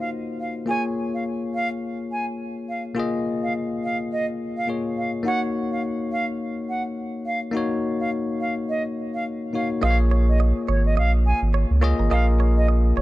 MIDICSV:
0, 0, Header, 1, 5, 480
1, 0, Start_track
1, 0, Key_signature, -5, "minor"
1, 0, Tempo, 571429
1, 575, Time_signature, 4, 2, 24, 8
1, 10934, End_track
2, 0, Start_track
2, 0, Title_t, "Flute"
2, 0, Program_c, 0, 73
2, 339, Note_on_c, 0, 77, 70
2, 455, Note_off_c, 0, 77, 0
2, 579, Note_on_c, 0, 80, 99
2, 695, Note_off_c, 0, 80, 0
2, 958, Note_on_c, 0, 77, 68
2, 1042, Note_off_c, 0, 77, 0
2, 1299, Note_on_c, 0, 77, 88
2, 1415, Note_off_c, 0, 77, 0
2, 1781, Note_on_c, 0, 80, 76
2, 1896, Note_off_c, 0, 80, 0
2, 2260, Note_on_c, 0, 77, 78
2, 2376, Note_off_c, 0, 77, 0
2, 2881, Note_on_c, 0, 77, 73
2, 2964, Note_off_c, 0, 77, 0
2, 3223, Note_on_c, 0, 77, 75
2, 3338, Note_off_c, 0, 77, 0
2, 3462, Note_on_c, 0, 75, 79
2, 3577, Note_off_c, 0, 75, 0
2, 3840, Note_on_c, 0, 77, 76
2, 3923, Note_off_c, 0, 77, 0
2, 4182, Note_on_c, 0, 77, 71
2, 4297, Note_off_c, 0, 77, 0
2, 4420, Note_on_c, 0, 78, 100
2, 4536, Note_off_c, 0, 78, 0
2, 4801, Note_on_c, 0, 77, 68
2, 4883, Note_off_c, 0, 77, 0
2, 5142, Note_on_c, 0, 77, 88
2, 5257, Note_off_c, 0, 77, 0
2, 5621, Note_on_c, 0, 78, 76
2, 5736, Note_off_c, 0, 78, 0
2, 6100, Note_on_c, 0, 77, 81
2, 6216, Note_off_c, 0, 77, 0
2, 6721, Note_on_c, 0, 77, 73
2, 6803, Note_off_c, 0, 77, 0
2, 7061, Note_on_c, 0, 77, 76
2, 7177, Note_off_c, 0, 77, 0
2, 7303, Note_on_c, 0, 75, 80
2, 7417, Note_off_c, 0, 75, 0
2, 7680, Note_on_c, 0, 77, 73
2, 7763, Note_off_c, 0, 77, 0
2, 8022, Note_on_c, 0, 77, 72
2, 8137, Note_off_c, 0, 77, 0
2, 8261, Note_on_c, 0, 77, 113
2, 8376, Note_off_c, 0, 77, 0
2, 8642, Note_on_c, 0, 75, 72
2, 8724, Note_off_c, 0, 75, 0
2, 8982, Note_on_c, 0, 73, 76
2, 9097, Note_off_c, 0, 73, 0
2, 9120, Note_on_c, 0, 75, 82
2, 9203, Note_off_c, 0, 75, 0
2, 9221, Note_on_c, 0, 77, 95
2, 9337, Note_off_c, 0, 77, 0
2, 9461, Note_on_c, 0, 80, 85
2, 9576, Note_off_c, 0, 80, 0
2, 10180, Note_on_c, 0, 77, 108
2, 10296, Note_off_c, 0, 77, 0
2, 10560, Note_on_c, 0, 75, 77
2, 10643, Note_off_c, 0, 75, 0
2, 10901, Note_on_c, 0, 73, 75
2, 10934, Note_off_c, 0, 73, 0
2, 10934, End_track
3, 0, Start_track
3, 0, Title_t, "Clean electric guitar"
3, 0, Program_c, 1, 27
3, 8255, Note_on_c, 1, 75, 96
3, 8359, Note_off_c, 1, 75, 0
3, 8496, Note_on_c, 1, 73, 78
3, 8599, Note_off_c, 1, 73, 0
3, 8736, Note_on_c, 1, 75, 78
3, 8839, Note_off_c, 1, 75, 0
3, 8975, Note_on_c, 1, 73, 77
3, 9079, Note_off_c, 1, 73, 0
3, 9216, Note_on_c, 1, 75, 85
3, 9395, Note_off_c, 1, 75, 0
3, 9695, Note_on_c, 1, 73, 84
3, 9799, Note_off_c, 1, 73, 0
3, 9934, Note_on_c, 1, 73, 90
3, 10038, Note_off_c, 1, 73, 0
3, 10074, Note_on_c, 1, 70, 69
3, 10149, Note_off_c, 1, 70, 0
3, 10175, Note_on_c, 1, 75, 109
3, 10279, Note_off_c, 1, 75, 0
3, 10415, Note_on_c, 1, 73, 78
3, 10519, Note_off_c, 1, 73, 0
3, 10655, Note_on_c, 1, 75, 79
3, 10759, Note_off_c, 1, 75, 0
3, 10895, Note_on_c, 1, 73, 79
3, 10934, Note_off_c, 1, 73, 0
3, 10934, End_track
4, 0, Start_track
4, 0, Title_t, "Tine electric piano"
4, 0, Program_c, 2, 4
4, 0, Control_c, 2, 64, 127
4, 0, Note_on_c, 2, 58, 79
4, 0, Note_on_c, 2, 63, 67
4, 0, Note_on_c, 2, 65, 54
4, 0, Note_on_c, 2, 66, 67
4, 0, Note_on_c, 2, 72, 85
4, 530, Note_off_c, 2, 58, 0
4, 537, Note_off_c, 2, 63, 0
4, 551, Note_off_c, 2, 72, 0
4, 553, Note_on_c, 2, 58, 62
4, 566, Note_off_c, 2, 65, 0
4, 566, Note_on_c, 2, 65, 60
4, 571, Note_off_c, 2, 66, 0
4, 581, Note_on_c, 2, 68, 59
4, 587, Control_c, 2, 64, 0
4, 595, Note_on_c, 2, 73, 68
4, 751, Control_c, 2, 64, 127
4, 2450, Note_off_c, 2, 58, 0
4, 2457, Note_off_c, 2, 65, 0
4, 2464, Note_off_c, 2, 68, 0
4, 2471, Note_off_c, 2, 73, 0
4, 2474, Note_on_c, 2, 58, 76
4, 2488, Note_on_c, 2, 65, 72
4, 2502, Note_on_c, 2, 68, 70
4, 2516, Note_on_c, 2, 75, 82
4, 3895, Note_off_c, 2, 58, 0
4, 3902, Note_off_c, 2, 65, 0
4, 3909, Note_off_c, 2, 68, 0
4, 3916, Note_off_c, 2, 75, 0
4, 3924, Note_on_c, 2, 58, 47
4, 3931, Note_on_c, 2, 65, 43
4, 3938, Note_on_c, 2, 68, 44
4, 3945, Note_on_c, 2, 73, 53
4, 4383, Note_off_c, 2, 58, 0
4, 4393, Note_on_c, 2, 58, 66
4, 4408, Note_on_c, 2, 63, 58
4, 4413, Note_off_c, 2, 65, 0
4, 4416, Note_off_c, 2, 68, 0
4, 4420, Note_off_c, 2, 73, 0
4, 4421, Note_on_c, 2, 66, 60
4, 4426, Control_c, 2, 64, 0
4, 4436, Note_on_c, 2, 73, 74
4, 4567, Control_c, 2, 64, 127
4, 6290, Note_off_c, 2, 58, 0
4, 6297, Note_off_c, 2, 63, 0
4, 6304, Note_off_c, 2, 66, 0
4, 6311, Note_off_c, 2, 73, 0
4, 6313, Note_on_c, 2, 58, 78
4, 6327, Note_on_c, 2, 63, 70
4, 6341, Note_on_c, 2, 66, 70
4, 6355, Note_on_c, 2, 73, 83
4, 7970, Note_off_c, 2, 58, 0
4, 7977, Note_off_c, 2, 63, 0
4, 7984, Note_off_c, 2, 66, 0
4, 7991, Note_off_c, 2, 73, 0
4, 8005, Note_on_c, 2, 58, 49
4, 8011, Note_on_c, 2, 63, 43
4, 8019, Note_on_c, 2, 66, 43
4, 8025, Note_on_c, 2, 73, 52
4, 8234, Note_off_c, 2, 58, 0
4, 8244, Note_on_c, 2, 58, 73
4, 8251, Note_on_c, 2, 65, 68
4, 8253, Note_off_c, 2, 63, 0
4, 8257, Note_off_c, 2, 66, 0
4, 8258, Note_on_c, 2, 68, 70
4, 8260, Note_off_c, 2, 73, 0
4, 8263, Control_c, 2, 64, 0
4, 8265, Note_on_c, 2, 72, 69
4, 8319, Note_on_c, 2, 73, 83
4, 8323, Note_off_c, 2, 72, 0
4, 8420, Control_c, 2, 64, 127
4, 9142, Note_off_c, 2, 58, 0
4, 9145, Note_off_c, 2, 65, 0
4, 9149, Note_off_c, 2, 68, 0
4, 9179, Note_off_c, 2, 73, 0
4, 9924, Note_on_c, 2, 58, 92
4, 9931, Note_on_c, 2, 65, 80
4, 9938, Note_on_c, 2, 68, 86
4, 9946, Note_on_c, 2, 75, 99
4, 10152, Note_off_c, 2, 58, 0
4, 10156, Note_off_c, 2, 65, 0
4, 10159, Note_off_c, 2, 68, 0
4, 10163, Note_off_c, 2, 75, 0
4, 10164, Note_on_c, 2, 58, 77
4, 10172, Note_on_c, 2, 65, 73
4, 10178, Note_on_c, 2, 68, 72
4, 10186, Note_on_c, 2, 70, 86
4, 10934, Note_off_c, 2, 58, 0
4, 10934, Note_off_c, 2, 65, 0
4, 10934, Note_off_c, 2, 68, 0
4, 10934, Note_off_c, 2, 70, 0
4, 10934, End_track
5, 0, Start_track
5, 0, Title_t, "Sub bass"
5, 0, Program_c, 3, 38
5, 8255, Note_on_c, 3, 34, 114
5, 8843, Note_off_c, 3, 34, 0
5, 8974, Note_on_c, 3, 32, 88
5, 9215, Note_on_c, 3, 34, 95
5, 9227, Note_off_c, 3, 32, 0
5, 9520, Note_off_c, 3, 34, 0
5, 9594, Note_on_c, 3, 32, 88
5, 9787, Note_off_c, 3, 32, 0
5, 9833, Note_on_c, 3, 37, 96
5, 10026, Note_off_c, 3, 37, 0
5, 10074, Note_on_c, 3, 32, 101
5, 10155, Note_off_c, 3, 32, 0
5, 10174, Note_on_c, 3, 34, 108
5, 10861, Note_off_c, 3, 34, 0
5, 10894, Note_on_c, 3, 29, 97
5, 10934, Note_off_c, 3, 29, 0
5, 10934, End_track
0, 0, End_of_file